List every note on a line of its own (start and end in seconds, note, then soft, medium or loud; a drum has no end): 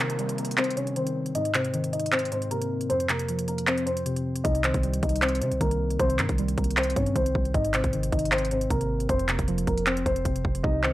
0.00 0.77 C3 medium
0.00 0.96 D#3 medium
0.00 0.19 G3 medium
0.00 0.37 A#3 medium
0.00 0.58 C4 medium
0.00 0.36 A#4 medium
0.00 downlifter medium
0.10 closed hi-hat medium
0.19 1.16 G3 medium
0.19 closed hi-hat medium
0.29 closed hi-hat medium
0.38 0.54 A#3 medium
0.38 0.53 A#4 medium
0.38 closed hi-hat medium
0.38 open hi-hat medium
0.45 closed hi-hat medium
0.51 closed hi-hat medium
0.58 1.35 C4 medium
0.58 0.73 C4 medium
0.58 0.73 C5 medium
0.58 clap loud
0.58 closed hi-hat medium
0.64 closed hi-hat medium
0.71 closed hi-hat medium
0.77 1.35 C3 medium
0.77 0.92 C#4 medium
0.77 0.92 C#5 medium
0.77 closed hi-hat medium
0.87 closed hi-hat medium
0.96 1.35 D#3 medium
0.96 1.33 C4 medium
0.96 1.33 C5 medium
0.96 closed hi-hat medium
1.07 closed hi-hat medium
1.26 closed hi-hat soft
1.35 2.31 G#2 medium
1.35 1.50 D#4 medium
1.35 1.50 D#5 medium
1.35 closed hi-hat medium
1.45 closed hi-hat medium
1.54 2.50 C3 medium
1.54 1.91 C4 medium
1.54 1.91 C5 medium
1.54 clap medium
1.54 closed hi-hat medium
1.65 closed hi-hat medium
1.74 2.71 D#3 medium
1.74 closed hi-hat medium
1.84 closed hi-hat medium
1.93 2.08 D#4 medium
1.93 2.08 D#5 medium
1.93 closed hi-hat medium
2.00 closed hi-hat medium
2.06 closed hi-hat medium
2.12 2.90 C4 medium
2.12 2.28 C4 medium
2.12 2.27 C5 medium
2.12 clap loud
2.12 closed hi-hat medium
2.19 closed hi-hat medium
2.25 closed hi-hat medium
2.32 2.90 G#2 medium
2.32 2.47 C4 medium
2.32 2.47 C5 medium
2.32 closed hi-hat medium
2.42 closed hi-hat medium
2.51 2.90 C3 medium
2.51 2.88 A#3 medium
2.51 2.87 A#4 medium
2.51 closed hi-hat medium
2.62 closed hi-hat medium
2.81 closed hi-hat soft
2.90 3.86 F2 loud
2.90 3.05 C4 medium
2.90 3.05 C5 loud
2.90 closed hi-hat medium
3.00 closed hi-hat medium
3.09 4.05 C3 medium
3.09 3.46 A#3 medium
3.09 3.46 A#4 medium
3.09 clap medium
3.09 closed hi-hat medium
3.19 closed hi-hat medium
3.29 4.25 F3 medium
3.29 closed hi-hat medium
3.39 closed hi-hat medium
3.48 3.63 A#3 medium
3.48 3.63 A#4 medium
3.48 closed hi-hat medium
3.58 closed hi-hat medium
3.67 4.45 C4 medium
3.67 3.82 C4 medium
3.67 3.82 C5 medium
3.67 clap loud
3.67 closed hi-hat medium
3.78 closed hi-hat medium
3.86 4.45 F2 medium
3.86 4.41 C4 medium
3.86 4.41 C5 medium
3.86 closed hi-hat medium
3.97 closed hi-hat medium
4.06 4.44 C3 medium
4.06 closed hi-hat medium
4.16 closed hi-hat medium
4.36 closed hi-hat medium
4.44 4.73 C2 loud
4.44 5.40 C3 medium
4.44 4.60 D#4 medium
4.44 4.59 D#5 loud
4.44 kick loud
4.44 closed hi-hat medium
4.55 closed hi-hat medium
4.64 5.60 D#3 medium
4.64 5.01 C4 medium
4.64 5.00 C5 medium
4.64 clap loud
4.64 closed hi-hat medium
4.74 4.95 C2 loud
4.74 kick loud
4.74 closed hi-hat medium
4.83 5.80 G3 medium
4.83 closed hi-hat medium
4.94 5.02 C#2 loud
4.94 closed hi-hat medium
5.03 5.43 C2 loud
5.03 5.18 D#4 medium
5.03 5.18 D#5 medium
5.03 kick loud
5.03 closed hi-hat medium
5.09 closed hi-hat medium
5.16 closed hi-hat medium
5.21 5.37 C4 medium
5.21 6.19 C4 medium
5.21 5.37 C5 medium
5.21 clap loud
5.21 closed hi-hat medium
5.29 closed hi-hat medium
5.35 closed hi-hat medium
5.41 5.53 C3 loud
5.41 5.98 C3 medium
5.41 5.57 C4 medium
5.41 5.56 C5 medium
5.41 closed hi-hat medium
5.52 5.60 C2 medium
5.52 closed hi-hat medium
5.61 5.98 C2 loud
5.61 6.18 D#3 medium
5.61 5.98 A#3 medium
5.61 5.97 A#4 medium
5.61 kick medium
5.61 closed hi-hat medium
5.71 closed hi-hat medium
5.90 closed hi-hat soft
5.99 6.20 C2 loud
5.99 6.95 C3 medium
5.99 6.15 C4 medium
5.99 6.14 C5 loud
5.99 kick loud
5.99 closed hi-hat medium
6.10 closed hi-hat medium
6.19 6.29 G2 loud
6.19 7.15 D#3 medium
6.19 6.56 A#3 medium
6.19 6.55 A#4 medium
6.19 clap medium
6.19 closed hi-hat medium
6.29 6.56 C2 loud
6.29 kick medium
6.29 closed hi-hat medium
6.38 7.35 G3 medium
6.38 closed hi-hat medium
6.48 closed hi-hat medium
6.58 6.95 C2 loud
6.58 6.73 A#3 medium
6.58 6.72 A#4 medium
6.58 kick loud
6.58 closed hi-hat medium
6.58 open hi-hat medium
6.64 closed hi-hat medium
6.71 closed hi-hat medium
6.77 7.54 C4 medium
6.77 6.92 C4 medium
6.77 6.92 C5 medium
6.77 clap loud
6.77 closed hi-hat medium
6.83 closed hi-hat medium
6.90 closed hi-hat medium
6.96 7.15 G2 loud
6.96 7.54 C3 medium
6.96 7.12 C#4 medium
6.96 7.11 C#5 medium
6.96 kick loud
6.96 closed hi-hat medium
7.06 closed hi-hat medium
7.16 7.34 C2 loud
7.16 7.54 D#3 medium
7.16 7.52 C4 medium
7.16 7.52 C5 medium
7.16 kick medium
7.16 closed hi-hat medium
7.26 closed hi-hat medium
7.35 7.54 C2 loud
7.35 kick loud
7.45 closed hi-hat soft
7.54 7.83 G#1 loud
7.54 8.50 G#2 medium
7.54 7.70 D#4 medium
7.54 7.69 D#5 medium
7.54 kick loud
7.54 closed hi-hat medium
7.65 closed hi-hat medium
7.74 8.69 C3 medium
7.74 8.11 C4 medium
7.74 8.10 C5 medium
7.74 clap loud
7.74 closed hi-hat medium
7.84 8.11 G#1 loud
7.84 kick medium
7.84 closed hi-hat medium
7.93 8.90 D#3 medium
7.93 closed hi-hat medium
8.03 closed hi-hat medium
8.12 8.68 G#1 loud
8.12 8.28 D#4 medium
8.12 8.27 D#5 medium
8.12 kick loud
8.12 closed hi-hat medium
8.19 closed hi-hat medium
8.25 closed hi-hat medium
8.31 9.09 C4 medium
8.31 8.47 C4 medium
8.31 8.46 C5 medium
8.31 clap loud
8.31 closed hi-hat medium
8.38 closed hi-hat medium
8.45 closed hi-hat medium
8.51 9.09 G#2 medium
8.51 8.67 C4 medium
8.51 8.66 C5 medium
8.51 closed hi-hat medium
8.61 closed hi-hat medium
8.70 9.08 G#1 loud
8.70 9.09 C3 medium
8.70 9.07 A#3 medium
8.70 9.07 A#4 medium
8.70 kick medium
8.70 closed hi-hat medium
8.81 closed hi-hat medium
9.00 closed hi-hat soft
9.09 9.38 F1 loud
9.09 10.05 F2 medium
9.09 9.24 C4 medium
9.09 9.24 C5 loud
9.09 kick loud
9.09 closed hi-hat medium
9.19 closed hi-hat medium
9.29 10.24 C3 medium
9.29 9.66 A#3 medium
9.29 9.65 A#4 medium
9.29 clap medium
9.29 closed hi-hat medium
9.39 9.66 F1 loud
9.39 kick medium
9.39 closed hi-hat medium
9.48 10.45 F3 medium
9.48 closed hi-hat medium
9.58 closed hi-hat medium
9.67 10.04 F1 loud
9.67 9.83 A#3 medium
9.67 9.82 A#4 medium
9.67 kick medium
9.67 closed hi-hat medium
9.78 closed hi-hat medium
9.86 10.64 C4 medium
9.86 10.02 C4 medium
9.86 10.01 C5 medium
9.86 clap loud
9.86 closed hi-hat medium
9.97 closed hi-hat medium
10.06 10.25 F1 loud
10.06 10.64 F2 medium
10.06 10.61 C4 medium
10.06 10.60 C5 medium
10.06 kick loud
10.06 closed hi-hat medium
10.16 closed hi-hat medium
10.25 10.44 F1 loud
10.25 10.63 C3 medium
10.25 kick medium
10.25 closed hi-hat medium
10.36 closed hi-hat medium
10.45 10.63 F1 loud
10.45 kick loud
10.55 closed hi-hat medium
10.63 10.92 C2 loud
10.63 10.93 C3 medium
10.63 10.79 D#4 medium
10.63 10.79 D#5 medium
10.63 kick loud
10.83 10.93 D#3 medium
10.83 10.93 C4 medium
10.83 10.93 C5 medium
10.83 clap loud